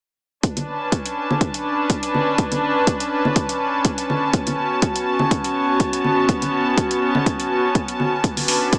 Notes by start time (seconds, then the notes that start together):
0.43 D4, kick, closed hi-hat
0.48 B4
0.57 closed hi-hat, high conga
0.69 C#4 A5
0.92 kick, closed hi-hat
1.06 closed hi-hat
1.31 high conga
1.41 kick, closed hi-hat
1.54 closed hi-hat
1.90 kick, closed hi-hat
2.03 closed hi-hat
2.14 high conga
2.38 kick, closed hi-hat
2.52 closed hi-hat, high conga
2.87 kick, closed hi-hat
3.00 closed hi-hat
3.25 high conga
3.36 kick, closed hi-hat
3.49 closed hi-hat
3.85 kick, closed hi-hat
3.98 closed hi-hat
4.10 high conga
4.33 B3, kick, closed hi-hat
4.43 F#4, closed hi-hat, high conga
4.82 kick, closed hi-hat
4.96 closed hi-hat
5.19 high conga
5.31 kick, closed hi-hat
5.44 closed hi-hat
5.80 kick, closed hi-hat
5.93 closed hi-hat
6.04 high conga
6.29 kick, closed hi-hat
6.42 closed hi-hat, high conga
6.77 kick, closed hi-hat
6.91 closed hi-hat
7.15 high conga
7.26 kick, closed hi-hat
7.40 closed hi-hat
7.75 kick, closed hi-hat
7.88 closed hi-hat
8.00 high conga
8.24 D4, kick, closed hi-hat
8.33 B4, open hi-hat, high conga
8.48 open hi-hat
8.73 kick, closed hi-hat